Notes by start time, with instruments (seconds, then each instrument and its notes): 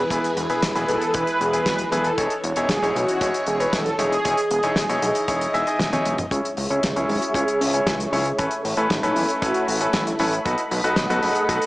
Already playing: string machine E3 G#4 B4
0.10 analog synth bass E1, grand piano B3 E4 G#4 B4, kick, closed hi-hat
0.24 closed hi-hat
0.37 analog synth bass E1, closed hi-hat
0.50 analog synth bass E1, grand piano B3 E4 G#4 B4, closed hi-hat
0.62 analog synth bass E1, kick, snare, closed hi-hat
0.75 analog synth bass E1, grand piano B3 E4 G#4 B4, closed hi-hat
0.88 analog synth bass B1, analog polysynth A4, closed hi-hat
1.02 closed hi-hat
1.14 analog synth bass E1, grand piano B3 E4 G#4 B4, analog polysynth B4, kick, closed hi-hat
1.27 closed hi-hat
1.40 analog synth bass E1, analog polysynth G#4, closed hi-hat
1.53 grand piano B3 E4 G#4 B4, analog polysynth B4, closed hi-hat
1.66 analog synth bass E1, kick, snare, closed hi-hat
1.79 closed hi-hat
1.92 analog synth bass E1, grand piano B3 E4 G#4 B4, analog polysynth A4, closed hi-hat
2.04 closed hi-hat
2.18 analog synth bass E1, grand piano D#4 E4 G#4 C#5, string machine C#5, kick, closed hi-hat
2.30 closed hi-hat
2.44 analog synth bass E1, closed hi-hat
2.56 analog synth bass E1, grand piano D#4 E4 G#4 C#5, closed hi-hat
2.69 analog synth bass E1, analog polysynth G#4, kick, snare, closed hi-hat
2.82 analog synth bass E1, grand piano D#4 E4 G#4 C#5, closed hi-hat
2.95 analog synth bass B1, analog polysynth F#4, closed hi-hat
3.08 closed hi-hat
3.21 analog synth bass E1, grand piano D#4 E4 G#4 C#5, kick, closed hi-hat
3.34 closed hi-hat
3.46 analog synth bass E1, analog polysynth G#4, closed hi-hat
3.60 grand piano D#4 E4 G#4 C#5, analog polysynth B4, closed hi-hat
3.73 analog synth bass E1, analog polysynth A4, kick, snare, closed hi-hat
3.86 closed hi-hat
3.99 analog synth bass E1, grand piano D#4 E4 G#4 C#5, analog polysynth G#4, closed hi-hat
4.12 closed hi-hat
4.25 analog synth bass E1, grand piano D#4 E4 G#4 C#5, string machine D#5, kick, closed hi-hat
4.37 closed hi-hat
4.51 analog synth bass E1, closed hi-hat
4.63 analog synth bass E1, grand piano D#4 E4 G#4 C#5, closed hi-hat
4.76 analog synth bass E1, kick, snare, closed hi-hat
4.89 analog synth bass E1, grand piano D#4 E4 G#4 C#5, closed hi-hat
5.02 analog synth bass B1, closed hi-hat
5.15 closed hi-hat
5.28 analog synth bass E1, grand piano D#4 E4 G#4 C#5, kick, closed hi-hat
5.41 closed hi-hat
5.54 analog synth bass E1, grand piano D#4 E4 G#4 E5, closed hi-hat
5.67 grand piano D#4 E4 G#4 D#5, closed hi-hat
5.79 analog synth bass E1, kick, snare, closed hi-hat, high tom
5.93 grand piano D#4 E4 G#4 C#5, closed hi-hat, high tom
6.05 analog synth bass E1, closed hi-hat
6.18 closed hi-hat, mid tom
6.31 analog synth bass C#2, grand piano C#4 E4 G#4 C#5, string machine G#4 C#5 E5 C#6, kick, closed hi-hat
6.45 closed hi-hat
6.57 analog synth bass C#2, open hi-hat
6.70 analog synth bass C#2, grand piano C#4 E4 G#4 C#5, closed hi-hat
6.83 analog synth bass C#2, analog polysynth E4, kick, snare, closed hi-hat
6.96 analog synth bass C#2, grand piano C#4 E4 G#4 C#5, closed hi-hat
7.09 analog synth bass G#1, analog polysynth F#4, open hi-hat
7.22 closed hi-hat
7.34 analog synth bass C#2, grand piano C#4 E4 G#4 C#5, analog polysynth G#4, kick, closed hi-hat
7.48 closed hi-hat
7.61 analog synth bass C#2, open hi-hat
7.74 grand piano C#4 E4 G#4 C#5, closed hi-hat
7.87 analog synth bass C#2, analog polysynth E4, kick, snare, closed hi-hat
8.00 closed hi-hat
8.13 analog synth bass C#2, grand piano C#4 E4 G#4 C#5, open hi-hat
8.26 closed hi-hat
8.38 analog synth bass A1, grand piano C#4 E4 A4 B4, string machine A4 E5 B5, kick, closed hi-hat
8.51 closed hi-hat
8.64 analog synth bass A1, open hi-hat
8.77 analog synth bass A1, grand piano C#4 E4 A4 B4, closed hi-hat
8.90 analog synth bass A1, analog polysynth D#4, kick, snare, closed hi-hat
9.03 analog synth bass A1, grand piano C#4 E4 A4 B4, closed hi-hat
9.16 analog synth bass E2, analog polysynth E4, open hi-hat
9.29 closed hi-hat
9.42 analog synth bass A1, grand piano C#4 E4 A4 B4, analog polysynth F#4, kick, closed hi-hat
9.54 closed hi-hat
9.68 analog synth bass A1, open hi-hat
9.81 grand piano C#4 E4 A4 B4, closed hi-hat
9.93 analog synth bass A1, analog polysynth E4, kick, snare, closed hi-hat
10.07 closed hi-hat
10.19 analog synth bass A1, grand piano C#4 E4 A4 B4, open hi-hat
10.33 closed hi-hat
10.45 analog synth bass B1, grand piano D#4 F#4 A4 B4, string machine A4 D#5 F#5, kick, closed hi-hat
10.58 closed hi-hat
10.71 analog synth bass B1, open hi-hat
10.84 analog synth bass B1, grand piano D#4 F#4 A4 B4, closed hi-hat
10.96 analog synth bass B1, analog polysynth F#4, kick, snare, closed hi-hat
11.10 analog synth bass B1, grand piano D#4 F#4 A4 B4, closed hi-hat
11.23 analog synth bass F#1, analog polysynth G#4, open hi-hat
11.35 closed hi-hat
11.49 analog synth bass B1, grand piano D#4 F#4 A4 B4, analog polysynth A4, kick, closed hi-hat
11.62 closed hi-hat